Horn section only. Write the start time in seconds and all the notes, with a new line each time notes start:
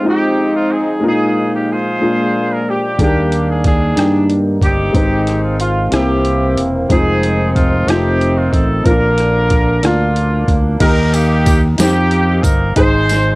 0.06 C4 D#4 G4
0.56 F4
0.72 G#4
1.05 D#4 F4 G#4
1.55 G4
1.70 F4 G#4 C5
2.54 A#4
2.70 G4
3.01 A#3 D4 G4
3.50 G#4
3.66 D4 G#4
4.64 C4 D#4 G4
5.44 F4
5.60 F4
5.93 A#3 E4 G4
6.91 C4 D#4 G#4
7.55 F4
7.88 C4 D#4 G4
8.37 F4
8.53 A4
8.85 D4 F4 A#4
9.84 A#3 D4 F4
10.82 D#4 G4 A#4
11.14 A#3 D#4 G4
11.80 A#3 D#4 G4
12.44 A#4
12.76 D#4 G#4 C5